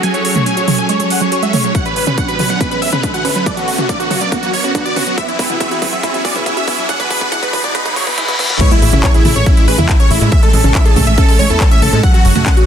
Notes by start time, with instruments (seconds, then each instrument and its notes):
Already playing: supersaw synth F#3 C#4 G#4 A4, riser
0.03 synth pluck F#3, supersaw synth G#5, closed hi-hat
0.14 supersaw synth C#5, closed hi-hat
0.25 analog synth bass F#1, supersaw synth C#5, open hi-hat
0.36 synth pluck A3, supersaw synth C#5, mid tom
0.46 synth pluck C#4, supersaw synth G#5, closed hi-hat
0.57 synth pluck F#4, supersaw synth C#5, closed hi-hat
0.68 synth pluck F#3, supersaw synth C#5, open hi-hat, mid tom
0.78 analog synth bass F#1, synth pluck F#3, supersaw synth G#5, closed hi-hat
0.89 synth pluck G#3, supersaw synth C#5, closed hi-hat
1.00 synth pluck F#3, supersaw synth C#5, closed hi-hat
1.10 analog synth bass F#1, supersaw synth F#5, open hi-hat
1.21 analog synth bass F#1, synth pluck F#3, supersaw synth C#5, closed hi-hat
1.32 synth pluck F#4, supersaw synth C#5, closed hi-hat
1.43 synth pluck G#3, supersaw synth E5, closed hi-hat
1.53 analog synth bass F#1, synth pluck A3, supersaw synth C#5, open hi-hat, mid tom
1.64 analog synth bass C#2, synth pluck F#3, supersaw synth C#5, closed hi-hat
1.74 supersaw synth D3 B3 F#5, synth pluck F#3, kick, closed hi-hat
1.85 supersaw synth B4, closed hi-hat
1.96 analog synth bass B1, supersaw synth B4, open hi-hat
2.07 analog synth bass B1, synth pluck C#4, supersaw synth B4, closed hi-hat, mid tom
2.18 synth pluck D4, supersaw synth F#5, kick, closed hi-hat
2.28 synth pluck F#4, supersaw synth B4, closed hi-hat
2.39 analog synth bass B1, synth pluck F#3, supersaw synth B4, open hi-hat, mid tom
2.50 analog synth bass B1, synth pluck F#3, supersaw synth F#5, closed hi-hat
2.60 synth pluck B3, supersaw synth B4, kick, closed hi-hat
2.71 synth pluck F#3, supersaw synth B4, closed hi-hat
2.82 analog synth bass B1, supersaw synth E5, open hi-hat
2.93 analog synth bass B1, synth pluck C#4, supersaw synth B4, closed hi-hat, mid tom
3.03 synth pluck D4, supersaw synth B4, kick, closed hi-hat
3.14 synth pluck F#4, supersaw synth F#5, closed hi-hat
3.25 analog synth bass B1, synth pluck C#4, supersaw synth B4, open hi-hat
3.35 analog synth bass F#1, synth pluck F#3, supersaw synth B4, closed hi-hat
3.46 synth pluck F#3, supersaw synth D5, kick, closed hi-hat
3.57 supersaw synth F#4, closed hi-hat
3.68 analog synth bass B1, supersaw synth F#4, open hi-hat
3.78 analog synth bass B1, synth pluck C#4, supersaw synth F#4, closed hi-hat, mid tom
3.89 synth pluck D4, supersaw synth D5, kick, closed hi-hat
4.00 synth pluck F#4, supersaw synth F#4, closed hi-hat
4.10 analog synth bass B1, synth pluck F#3, supersaw synth F#4, open hi-hat, mid tom
4.21 analog synth bass B1, synth pluck F#3, supersaw synth D5, closed hi-hat
4.32 synth pluck B3, supersaw synth F#4, kick, closed hi-hat
4.43 synth pluck F#3, supersaw synth F#4, closed hi-hat
4.53 analog synth bass B1, supersaw synth C#5, open hi-hat
4.64 analog synth bass B1, synth pluck C#4, supersaw synth F#4, closed hi-hat
4.75 synth pluck D4, supersaw synth F#4, kick, closed hi-hat
4.85 synth pluck F#4, supersaw synth D5, closed hi-hat
4.96 analog synth bass B1, synth pluck C#4, supersaw synth F#4, open hi-hat, mid tom
5.07 synth pluck F#3, supersaw synth F#4
5.17 supersaw synth E3 F#4 G#4 E5, synth pluck F#3, kick, closed hi-hat
5.28 supersaw synth E4, closed hi-hat
5.39 supersaw synth E4, kick, open hi-hat
5.50 synth pluck B3, supersaw synth E4, closed hi-hat, mid tom
5.60 synth pluck E4, supersaw synth E5, kick, closed hi-hat
5.71 supersaw synth E4, synth pluck F#4, closed hi-hat
5.82 synth pluck F#3, supersaw synth E4, kick, open hi-hat, mid tom
5.93 synth pluck F#3, supersaw synth E5
6.03 synth pluck G#3, supersaw synth E4, kick, closed hi-hat
6.14 synth pluck F#3, supersaw synth E4, closed hi-hat
6.25 supersaw synth D5, kick, open hi-hat
6.35 synth pluck B3, supersaw synth E4, closed hi-hat, mid tom
6.46 synth pluck E4, supersaw synth E4, kick, closed hi-hat
6.57 synth pluck F#4, supersaw synth E5, closed hi-hat
6.67 synth pluck B3, supersaw synth E4, kick, open hi-hat
6.78 analog synth bass B1, synth pluck F#3, supersaw synth E4, closed hi-hat
6.89 synth pluck F#3, supersaw synth F#5, kick, closed hi-hat
7.00 supersaw synth B4, kick, closed hi-hat
7.10 analog synth bass E1, supersaw synth B4, kick, open hi-hat
7.21 synth pluck B3, supersaw synth B4, kick, mid tom
7.32 synth pluck E4, supersaw synth F#5, kick, closed hi-hat
7.43 synth pluck F#4, supersaw synth B4, kick, closed hi-hat
7.53 synth pluck F#3, supersaw synth B4, kick, open hi-hat, mid tom
7.64 synth pluck F#3, supersaw synth D5, kick, closed hi-hat
7.75 synth pluck G#3, supersaw synth B4, kick, closed hi-hat, reverse cymbal
7.85 synth pluck F#3, supersaw synth B4, kick, closed hi-hat
7.96 supersaw synth C#5, kick, open hi-hat
8.07 analog synth bass B1, synth pluck B3, supersaw synth B4, kick, open hi-hat
8.18 synth pluck E4, supersaw synth B4, kick, closed hi-hat
8.28 synth pluck F#4, supersaw synth B4, kick, closed hi-hat
8.39 synth pluck B3, supersaw synth B4, kick, open hi-hat, mid tom
8.50 analog synth bass E2, synth pluck F#3, supersaw synth B4, kick, closed hi-hat
8.61 synth pluck G#3, supersaw synth G#3 A3 C#4 C#5, digital synth lead C#5, kick, closed hi-hat, crash, impact
8.71 synth pluck G#3, digital synth lead E4, supersaw synth E4, closed hi-hat
8.82 analog synth bass A1, synth pluck G#3, digital synth lead E4, supersaw synth E4, open hi-hat
8.93 analog synth bass A1, synth pluck C#4, digital synth lead E4, supersaw synth E4, closed hi-hat, mid tom
9.03 synth pluck E4, digital synth lead C#5, supersaw synth C#5, kick, clap, closed hi-hat
9.14 digital synth lead E4, supersaw synth E4, synth pluck G#4, closed hi-hat
9.25 analog synth bass A1, synth pluck A3, digital synth lead E4, supersaw synth E4, open hi-hat, mid tom
9.36 analog synth bass A1, digital synth lead C#5, supersaw synth C#5, closed hi-hat
9.46 synth pluck C#4, supersaw synth E4, digital synth lead E4, kick, closed hi-hat
9.57 synth pluck G#3, supersaw synth E4, digital synth lead E4, closed hi-hat
9.68 analog synth bass A1, synth pluck G#3, supersaw synth B4, digital synth lead B4, open hi-hat
9.78 analog synth bass E2, synth pluck E4, digital synth lead E4, supersaw synth E4, closed hi-hat, mid tom
9.89 digital synth lead E4, supersaw synth E4, kick, clap, closed hi-hat
10.00 synth pluck C#4, digital synth lead C#5, supersaw synth C#5, closed hi-hat
10.10 analog synth bass A1, digital synth lead E4, supersaw synth E4, open hi-hat
10.21 analog synth bass A2, synth pluck G#3, digital synth lead E4, supersaw synth E4, closed hi-hat
10.32 synth pluck G#3, digital synth lead E5, supersaw synth E5, kick, closed hi-hat
10.42 synth pluck G#3, digital synth lead A4, supersaw synth A4, closed hi-hat
10.53 analog synth bass A1, synth pluck G#3, digital synth lead A4, supersaw synth A4, open hi-hat
10.64 analog synth bass A1, synth pluck C#4, digital synth lead A4, supersaw synth A4, closed hi-hat, mid tom
10.75 synth pluck E4, digital synth lead E5, supersaw synth E5, kick, clap, closed hi-hat
10.85 synth pluck G#4, digital synth lead A4, supersaw synth A4, closed hi-hat
10.96 analog synth bass A1, synth pluck A3, digital synth lead A4, supersaw synth A4, kick, open hi-hat, mid tom
11.07 analog synth bass A1, digital synth lead E5, supersaw synth E5, closed hi-hat
11.18 synth pluck C#4, digital synth lead A4, supersaw synth A4, kick, closed hi-hat
11.28 synth pluck G#3, digital synth lead A4, supersaw synth A4, open hi-hat
11.39 analog synth bass A1, synth pluck G#3, digital synth lead C#5, supersaw synth C#5, open hi-hat
11.50 analog synth bass E2, synth pluck E4, digital synth lead A4, supersaw synth A4, closed hi-hat
11.60 digital synth lead A4, supersaw synth A4, kick, clap, closed hi-hat
11.71 synth pluck C#4, digital synth lead E5, supersaw synth E5, closed hi-hat
11.82 analog synth bass A1, digital synth lead A4, supersaw synth A4, open hi-hat, mid tom
11.92 analog synth bass A2, synth pluck G#3, digital synth lead A4, supersaw synth A4, closed hi-hat
12.03 synth pluck F#3, supersaw synth F#3 G#4 A4 F#5, digital synth lead F#5, kick, closed hi-hat
12.14 synth pluck F#3, digital synth lead F#4, supersaw synth F#4, closed hi-hat
12.25 analog synth bass F#1, synth pluck F#3, digital synth lead F#4, supersaw synth F#4, open hi-hat
12.35 analog synth bass F#1, synth pluck A3, supersaw synth F#4, digital synth lead F#4, closed hi-hat, mid tom
12.46 synth pluck C#4, supersaw synth F#5, digital synth lead F#5, kick, clap, closed hi-hat
12.57 synth pluck F#4, digital synth lead F#4, supersaw synth F#4, closed hi-hat